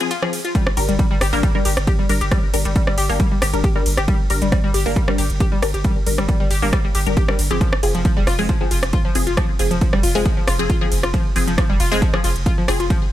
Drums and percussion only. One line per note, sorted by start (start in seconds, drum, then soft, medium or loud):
0.00 closed hi-hat medium
0.11 closed hi-hat medium
0.11 ride medium
0.23 cross-stick medium
0.33 open hi-hat loud
0.33 ride medium
0.45 closed hi-hat medium
0.55 kick loud
0.55 closed hi-hat medium
0.55 ride medium
0.67 cross-stick medium
0.77 open hi-hat loud
0.77 ride medium
0.89 closed hi-hat medium
0.99 kick loud
0.99 closed hi-hat medium
0.99 ride medium
1.21 cross-stick medium
1.21 open hi-hat loud
1.21 ride medium
1.33 open hi-hat medium
1.43 kick loud
1.43 closed hi-hat medium
1.43 ride medium
1.65 open hi-hat loud
1.65 ride medium
1.77 cross-stick medium
1.77 closed hi-hat medium
1.87 kick loud
1.87 closed hi-hat medium
1.87 ride medium
2.09 open hi-hat loud
2.09 ride medium
2.21 closed hi-hat medium
2.31 kick loud
2.31 cross-stick medium
2.31 closed hi-hat medium
2.31 ride medium
2.54 open hi-hat loud
2.54 ride medium
2.65 closed hi-hat medium
2.76 kick loud
2.76 closed hi-hat medium
2.76 ride medium
2.87 cross-stick medium
2.98 open hi-hat loud
2.98 ride medium
3.09 open hi-hat medium
3.20 kick loud
3.20 closed hi-hat medium
3.20 ride medium
3.42 cross-stick medium
3.42 open hi-hat loud
3.42 ride medium
3.54 closed hi-hat medium
3.64 kick loud
3.64 closed hi-hat medium
3.64 ride medium
3.86 open hi-hat loud
3.86 ride medium
3.97 cross-stick medium
3.97 closed hi-hat medium
4.08 kick loud
4.08 closed hi-hat medium
4.08 ride medium
4.30 open hi-hat loud
4.30 ride medium
4.42 closed hi-hat medium
4.52 kick loud
4.52 cross-stick medium
4.52 closed hi-hat medium
4.52 ride medium
4.74 open hi-hat loud
4.74 ride medium
4.86 open hi-hat medium
4.96 kick loud
4.96 closed hi-hat medium
4.96 ride medium
5.08 cross-stick medium
5.18 open hi-hat loud
5.18 ride medium
5.30 closed hi-hat medium
5.40 kick loud
5.40 closed hi-hat medium
5.40 ride medium
5.63 cross-stick medium
5.63 open hi-hat loud
5.63 ride medium
5.74 closed hi-hat medium
5.84 kick loud
5.84 closed hi-hat medium
5.84 ride medium
6.07 open hi-hat loud
6.07 ride medium
6.18 cross-stick medium
6.29 kick loud
6.29 closed hi-hat medium
6.29 ride medium
6.51 open hi-hat loud
6.51 ride medium
6.62 open hi-hat medium
6.73 kick loud
6.73 cross-stick medium
6.73 closed hi-hat medium
6.73 ride medium
6.95 open hi-hat loud
6.95 ride medium
7.06 closed hi-hat medium
7.17 kick loud
7.17 closed hi-hat medium
7.17 ride medium
7.28 cross-stick medium
7.39 open hi-hat loud
7.39 ride medium
7.51 closed hi-hat medium
7.61 kick loud
7.61 closed hi-hat medium
7.61 ride medium
7.73 cross-stick medium
7.83 open hi-hat loud
7.83 ride medium
7.95 closed hi-hat medium
8.05 kick loud
8.05 closed hi-hat medium
8.05 ride medium
8.27 cross-stick medium
8.27 open hi-hat loud
8.27 ride medium
8.39 open hi-hat medium
8.49 kick loud
8.49 closed hi-hat medium
8.49 ride medium
8.71 open hi-hat loud
8.71 ride medium
8.83 cross-stick medium
8.83 closed hi-hat medium
8.93 kick loud
8.93 closed hi-hat medium
8.93 ride medium
9.15 open hi-hat loud
9.15 ride medium
9.27 closed hi-hat medium
9.37 kick loud
9.37 cross-stick medium
9.37 closed hi-hat medium
9.37 ride medium
9.59 open hi-hat loud
9.59 ride medium
9.71 closed hi-hat medium
9.81 kick loud
9.81 closed hi-hat medium
9.81 ride medium
9.93 cross-stick medium
10.03 open hi-hat loud
10.03 ride medium
10.15 open hi-hat medium
10.26 kick loud
10.26 closed hi-hat medium
10.26 ride medium
10.48 cross-stick medium
10.48 open hi-hat loud
10.48 ride medium
10.59 closed hi-hat medium
10.70 kick loud
10.70 closed hi-hat medium
10.70 ride medium
10.92 open hi-hat loud
10.92 ride medium
11.03 cross-stick medium
11.03 closed hi-hat medium
11.14 kick loud
11.14 closed hi-hat medium
11.14 ride medium
11.36 open hi-hat loud
11.36 ride medium
11.48 closed hi-hat medium
11.58 kick loud
11.58 cross-stick medium
11.58 closed hi-hat medium
11.58 ride medium
11.80 open hi-hat loud
11.80 ride medium
11.92 open hi-hat medium
12.02 kick loud
12.02 closed hi-hat medium
12.02 ride medium
12.14 cross-stick medium
12.24 open hi-hat loud
12.24 ride medium
12.36 closed hi-hat medium
12.46 kick loud
12.46 closed hi-hat medium
12.46 ride medium
12.68 cross-stick medium
12.68 open hi-hat loud
12.68 ride medium
12.80 closed hi-hat medium
12.90 kick loud
12.90 closed hi-hat medium
12.90 ride medium